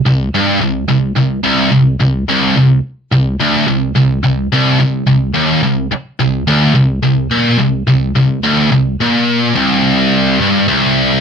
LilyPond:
\new Staff \with { instrumentName = "Distorted electric guitar" } { \clef bass \time 4/4 \key c \minor \tempo 4 = 107 c,8 g,8 c,8 c,8 c,8 c,8 c,8 c,8 | c,8 c,8 r8 c,8 d,8 c,8 c,8 c,8 | c,8 c,8 c,8 ees,8 c,8 r8 c,8 d,8 | c,8 c,8 bes,8 c,8 c,8 c,8 d,8 c,8 |
bes,4 c,4. g,8 c,4 | }